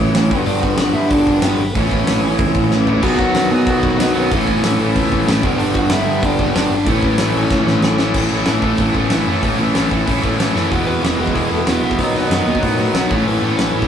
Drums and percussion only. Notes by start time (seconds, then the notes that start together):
0.15 snare, open hi-hat
0.31 kick
0.46 open hi-hat
0.63 kick
0.78 snare, open hi-hat
1.10 kick, open hi-hat
1.27 kick
1.42 snare, open hi-hat
1.75 kick, open hi-hat
1.91 kick
2.07 snare, open hi-hat
2.38 kick, open hi-hat
2.55 kick
2.71 snare
2.87 floor tom
3.02 kick, open hi-hat, crash
3.19 kick
3.35 snare, open hi-hat
3.67 kick, open hi-hat
3.83 kick
4.00 snare, open hi-hat
4.31 kick, open hi-hat
4.47 kick
4.64 snare, open hi-hat
4.96 kick, open hi-hat
5.12 kick
5.28 snare, open hi-hat
5.43 kick
5.59 open hi-hat
5.75 kick
5.90 snare, open hi-hat
6.23 kick, open hi-hat
6.39 kick
6.56 snare, open hi-hat
6.87 kick, open hi-hat
7.03 kick
7.18 snare, open hi-hat
7.50 kick, snare
7.67 snare
7.82 snare
7.98 snare
8.14 kick, crash
8.46 snare, open hi-hat
8.62 kick
8.77 kick, open hi-hat
8.95 kick
9.10 snare, open hi-hat
9.42 kick, open hi-hat
9.75 snare, open hi-hat
9.91 kick
10.08 kick, open hi-hat
10.23 kick
10.40 snare, open hi-hat
10.56 snare
10.72 kick, open hi-hat
11.05 snare, open hi-hat
11.27 kick
11.36 kick, open hi-hat
11.67 snare, open hi-hat
11.91 kick
11.99 kick, open hi-hat
12.31 snare, open hi-hat
12.55 kick
12.63 kick, open hi-hat
12.95 snare, open hi-hat
13.11 kick
13.28 open hi-hat
13.59 snare, open hi-hat
13.82 kick